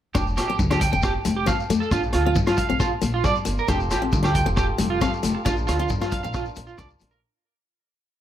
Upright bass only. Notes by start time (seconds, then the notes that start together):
0.15 F1
0.37 A1
0.59 D2
0.92 F1
1.25 F1
1.70 F2
1.91 A#1
2.14 D2
2.36 G2
2.69 A#1
3.03 A#1
3.47 G1
3.68 F1
3.91 A1
4.13 D2
4.47 F1
4.79 F1
5.23 F1
5.46 A#1
5.68 D2
5.90 G2
6.24 A#1
6.56 A#1
6.78 C2
7.00 A#1